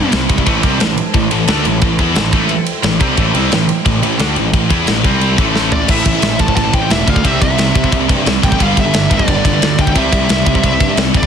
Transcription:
Already playing: distorted electric guitar G3 C4, string section E4 G4 C5 G5
0.00 distorted electric guitar C3
0.05 distorted electric guitar C3 G3
0.12 picked electric bass C2, distorted electric guitar C3 G3 C4, snare, ride
0.29 picked electric bass C2, distorted electric guitar C3 G3, kick, ride
0.38 distorted electric guitar C3 G3, kick
0.45 picked electric bass A1, distorted electric guitar A2 E3 A3, string section E4 A4 C5 A5, kick, ride
0.62 picked electric bass C2, distorted electric guitar C3 G3 C4, kick, ride
0.80 picked electric bass A1, distorted electric guitar A2 E3, snare, ride
0.98 ride
1.14 picked electric bass A1, distorted electric guitar A2 E3, kick, ride
1.31 picked electric bass A1, distorted electric guitar A2 E3, ride
1.48 picked electric bass D2, distorted electric guitar D3 A3 D4, snare, ride
1.65 picked electric bass A1, distorted electric guitar A2 E3, ride
1.81 picked electric bass A1, distorted electric guitar A2 E3, kick, ride
1.99 picked electric bass E2, distorted electric guitar E3 B3 E4, kick, ride
2.15 picked electric bass A1, distorted electric guitar A2 E3, snare, ride
2.33 picked electric bass A1, distorted electric guitar A2 E3 A3, kick, ride
2.48 string section G5, ride
2.66 ride
2.83 picked electric bass A1, distorted electric guitar A2 E3, snare, ride
3.00 picked electric bass C2, distorted electric guitar C3 G3 C4, kick, ride
3.17 picked electric bass A1, distorted electric guitar A2 E3 A3, kick, ride
3.34 picked electric bass C2, distorted electric guitar C3 G3 C4, ride
3.52 picked electric bass A1, distorted electric guitar A2 E3, snare, ride
3.69 ride
3.86 picked electric bass A1, distorted electric guitar A2 E3, kick, ride
4.03 picked electric bass A1, distorted electric guitar A2 E3, ride
4.19 picked electric bass D2, distorted electric guitar D3 A3 D4, snare, ride
4.36 picked electric bass A1, distorted electric guitar A2 E3, ride
4.53 picked electric bass A1, distorted electric guitar A2 E3, kick, ride
4.70 picked electric bass E2, distorted electric guitar E3 B3 E4, kick, ride
4.87 picked electric bass A1, distorted electric guitar A2 E3, snare, ride
5.04 picked electric bass C2, distorted electric guitar C3 G3 C4, string section C4 G4 C6, kick, ride
5.21 ride
5.36 picked electric bass A1, distorted electric guitar A2 E3 A3, string section E4 C5 A5, kick, ride
5.55 snare
5.72 lead electric guitar D5, floor tom
5.88 picked electric bass A1, distorted electric guitar A2 E3 A3, string section A3 E4 B4 C5, lead electric guitar E5, kick, crash
6.05 picked electric bass A1, distorted electric guitar A2 E3, lead electric guitar E5, kick, ride
6.15 distorted electric guitar A2 E3
6.22 picked electric bass A1, distorted electric guitar A2 E3, snare, ride
6.39 picked electric bass A1, distorted electric guitar A2 E3, lead electric guitar A5, kick, ride
6.48 distorted electric guitar A2 E3, kick
6.56 picked electric bass A1, distorted electric guitar A2 E3, lead electric guitar A5, kick, ride
6.65 distorted electric guitar A2 E3
6.72 picked electric bass A1, distorted electric guitar A2 E3 A3, lead electric guitar G5, kick, ride
6.82 distorted electric guitar A2 E3
6.90 picked electric bass E1, distorted electric guitar A2 E3 A3, lead electric guitar E5, snare, ride
7.08 picked electric bass D2, distorted electric guitar A2 E3, lead electric guitar F5, kick, ride
7.16 distorted electric guitar A2 E3, kick
7.24 picked electric bass C2, distorted electric guitar C3 G3 C4, string section C4 G4 D5 E5, lead electric guitar E5, kick, ride
7.41 picked electric bass C2, distorted electric guitar C3 G3, lead electric guitar E5, kick, ride
7.49 distorted electric guitar C3 G3
7.58 picked electric bass C2, distorted electric guitar C3 G3, snare, ride
7.75 distorted electric guitar C3 G3, picked electric bass C3, kick, ride
7.84 distorted electric guitar C3 G3, kick
7.92 picked electric bass C2, distorted electric guitar C3 G3, kick, ride
8.00 distorted electric guitar C3 G3
8.08 picked electric bass G2, distorted electric guitar C3 G3 C4, kick, ride
8.17 distorted electric guitar C3 G3
8.25 picked electric bass C2, distorted electric guitar C3 G3 C4, snare, ride
8.42 picked electric bass A1, distorted electric guitar C3 G3, lead electric guitar G5, kick, ride
8.51 distorted electric guitar C3 G3, kick
8.59 picked electric bass G1, distorted electric guitar G2 D3 G3, string section G3 D4 A4 B4, lead electric guitar F5, kick, ride
8.77 picked electric bass G1, distorted electric guitar G2 D3, lead electric guitar E5, kick, ride
8.84 distorted electric guitar G2 D3
8.93 picked electric bass G1, distorted electric guitar G2 D3, snare, ride
9.10 picked electric bass G1, distorted electric guitar G2 D3, lead electric guitar D5, kick, ride
9.18 distorted electric guitar G2 D3, kick
9.27 picked electric bass G1, distorted electric guitar G2 D3, kick, ride
9.36 distorted electric guitar G2 D3
9.44 picked electric bass G1, distorted electric guitar G2 D3 G3, kick, ride
9.53 distorted electric guitar G2 D3
9.62 picked electric bass D2, distorted electric guitar G2 D3 G3, snare, ride
9.78 picked electric bass D2, distorted electric guitar G2 D3, lead electric guitar G5, kick, ride
9.87 distorted electric guitar G2 D3, kick
9.94 picked electric bass C2, distorted electric guitar C3 G3 C4, string section C4 G4 D5 E5, kick, ride
9.98 lead electric guitar E5
10.12 picked electric bass C2, distorted electric guitar C3 G3, kick, ride
10.20 distorted electric guitar C3 G3
10.29 picked electric bass C2, distorted electric guitar C3 G3, snare, ride
10.46 picked electric bass C3, distorted electric guitar C3 G3, kick, ride
10.55 distorted electric guitar C3 G3, kick
10.63 picked electric bass C2, distorted electric guitar C3 G3, kick, ride
10.73 distorted electric guitar C3 G3
10.79 picked electric bass G2, distorted electric guitar C3 G3 C4, kick, ride
10.89 distorted electric guitar C3 G3
10.97 picked electric bass C2, distorted electric guitar C3 G3 C4, snare, ride
11.14 picked electric bass G#1, distorted electric guitar C3 G3, lead electric guitar D5, kick, ride
11.23 distorted electric guitar C3 G3, kick

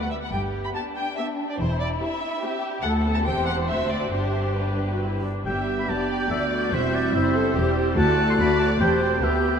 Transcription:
Already playing: double bass section D2, cello section D2, viola section A3
0.01 violin section F#5
0.11 viola section G3, violin section E5
0.21 violin section F#5
0.33 double bass section G1, cello section G2, violin section G4 G5
0.64 violin section B5
0.75 viola section B3 G4, violin section D4 A5
0.96 violin section G5
1.17 viola section B3 G4, violin section E5
1.50 violin section D5
1.59 double bass section E1, cello section E2, violin section E4 C5
1.80 violin section D5
2.01 viola section C4 G4, violin section E5
2.42 viola section C4 G4, violin section G4
2.83 double bass section D2, cello section D2, viola section A3 A4, violin section A4 F#5
3.04 viola section B3
3.15 violin section A5
3.25 double bass section E1, cello section E2, viola section C4 G4, violin section C5 G5
3.46 violin section F#5
3.68 cello section D2, double bass section D2, viola section C4 F#4, violin section E5
3.90 violin section D5
4.11 double bass section G1, cello section G2, viola section D4 G4, violin section G4 C5
4.56 viola section D4, violin section B4
4.91 viola section F#4
5.02 viola section E4
5.24 viola section D4
5.45 double bass section G1, cello section G2, viola section G3 G4, clarinet B3, french horn section B3 D4, violin section E5, oboe G5, flute G6
5.80 oboe B5
5.88 double bass section F#1, cello section F#2, viola section B3 G4, violin section D5, oboe A5
6.10 oboe G5
6.30 double bass section D2, cello section D2, viola section A3 F#4, violin section D5, oboe E5
6.64 oboe D5
6.72 double bass section E1, cello section E2, viola section G3, french horn section C4 E4, clarinet C4, violin section C5 E5, oboe C5
6.95 oboe D5
7.13 double bass section F#1, cello section F#2, viola section E4, violin section C5, oboe E5
7.34 viola section A4
7.54 double bass section E1, cello section E2, viola section G3 G4, violin section G4
7.95 double bass section D2, cello section D2, viola section A3 F#4, clarinet A3, french horn section A3 F#4, violin section A4 D5, oboe A5, flute F#6
8.30 oboe C6
8.38 double bass section D2, cello section D3, viola section F#4, violin section D5, oboe B5
8.60 oboe A5
8.79 double bass section E1, cello section E2, viola section C4 G4, clarinet C4, french horn section C4 G4, violin section C5, oboe G5, flute G6
9.02 oboe G5
9.21 double bass section D2, cello section D2, viola section B3 G4, french horn section B3 G4, clarinet B3, violin section G4 B4, oboe E5, flute G6

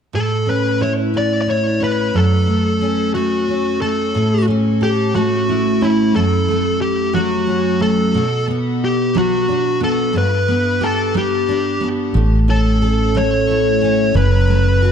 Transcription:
0.13 steel-string acoustic guitar A2, lead electric guitar A4
0.47 steel-string acoustic guitar C#4, lead electric guitar B4
0.81 steel-string acoustic guitar E4, lead electric guitar C#5
1.14 steel-string acoustic guitar C#4, lead electric guitar D5
1.41 lead electric guitar D5
1.47 steel-string acoustic guitar E4, lead electric guitar C#5
1.80 steel-string acoustic guitar C#4, lead electric guitar B4
2.14 steel-string acoustic guitar F#2, lead electric guitar A4
2.47 steel-string acoustic guitar A3
2.81 steel-string acoustic guitar C#4
3.14 steel-string acoustic guitar A3, lead electric guitar F#4
3.48 steel-string acoustic guitar C#4
3.81 steel-string acoustic guitar A3, lead electric guitar A4
4.14 steel-string acoustic guitar A2
4.48 steel-string acoustic guitar C#4
4.81 lead electric guitar G4, steel-string acoustic guitar A4
5.14 steel-string acoustic guitar A3, lead electric guitar F#4
5.49 steel-string acoustic guitar E4
5.81 steel-string acoustic guitar C#4, lead electric guitar E4
6.15 steel-string acoustic guitar F#2, lead electric guitar A4
6.48 steel-string acoustic guitar A3
6.81 lead electric guitar G4
7.14 steel-string acoustic guitar F#3, lead electric guitar F#4
7.47 steel-string acoustic guitar C#4
7.80 steel-string acoustic guitar A3, lead electric guitar A4
8.14 steel-string acoustic guitar B2
8.47 steel-string acoustic guitar B3
8.85 lead electric guitar G4
9.15 steel-string acoustic guitar F#3, lead electric guitar F#4
9.48 steel-string acoustic guitar D4
9.80 steel-string acoustic guitar B3, lead electric guitar A4
10.13 steel-string acoustic guitar G2
10.18 lead electric guitar B4
10.48 steel-string acoustic guitar B3
10.81 steel-string acoustic guitar G4, lead electric guitar A4
11.14 steel-string acoustic guitar G3, lead electric guitar G4
11.48 steel-string acoustic guitar D4
11.81 steel-string acoustic guitar B3
12.14 fingered electric bass A1, steel-string acoustic guitar A2
12.48 steel-string acoustic guitar C#4, lead electric guitar A4
12.82 steel-string acoustic guitar A4
13.15 steel-string acoustic guitar A3, lead electric guitar C#5
13.48 steel-string acoustic guitar E4
13.81 steel-string acoustic guitar C#4
14.14 fingered electric bass F#1, steel-string acoustic guitar F#2, lead electric guitar B4
14.48 steel-string acoustic guitar A3
14.82 steel-string acoustic guitar F#4

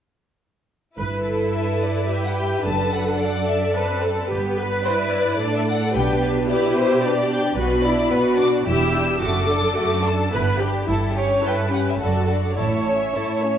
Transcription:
0.97 double bass section G1, cello section G2, violin section E4 B4, viola section B4
1.26 viola section A4
1.53 violin section B4 E5
1.82 violin section D5
2.09 viola section G4, violin section E5
2.25 violin section F#5
2.35 violin section G5
2.64 double bass section F#1, cello section F#2, violin section D4 A5, viola section A4
2.92 violin section F#5
3.20 violin section D5 F#5
3.47 violin section E5
3.75 violin section C4 A4 D5, viola section B4
4.04 viola section A4
4.29 double bass section G1, cello section G2, violin section B3 B4, viola section G4
4.57 viola section B4
4.84 violin section E4 C5 D5
5.13 violin section B4
5.39 cello section A2, violin section D4 D5, viola section A4
5.56 violin section E5
5.68 violin section F#5
5.94 double bass section B1, cello section B2, violin section D4 B4 G5, viola section G4
6.22 violin section D5
6.48 violin section E4 B4 D5, viola section G4
6.78 violin section C5
7.03 violin section D4 B4 D5
7.32 violin section G5
7.57 double bass section B1, cello section B2, violin section B3 B4 B5, viola section F#4
7.84 violin section D4 D5, viola section E4
8.11 cello section B2, violin section B3 B4, viola section F#4
8.38 violin section D4 D5 D6
8.67 double bass section E1, cello section E2, violin section E4 G4 E6, viola section G4
8.94 violin section D4 E4
9.21 double bass section F#1, cello section F#2, violin section A3 F#4 D6, viola section A4
9.49 violin section D4 A4
9.75 cello section F#2, violin section A3 F#4
10.04 violin section D4 A4 A5
10.31 double bass section G1, cello section G2, violin section B3 E4 B5, viola section B4
10.59 violin section D4 G4, viola section G4
10.88 double bass section G1, cello section G2, violin section E4 A4, viola section E4
11.15 violin section C#4 G4, viola section C#5
11.42 cello section G2, violin section E4 A4, viola section B4
11.47 violin section G5
11.70 violin section C#4 G4 F#5
11.88 violin section E5
11.99 double bass section F#1, cello section F#2, violin section F#4 A4 D5, viola section A4
12.28 violin section D4 F#4
12.56 double bass section A1, cello section A2, violin section E4 A4 E5, viola section C#5
12.86 violin section C#4 C#5
13.15 cello section A2, violin section E4 A4
13.43 violin section C#4 C#5

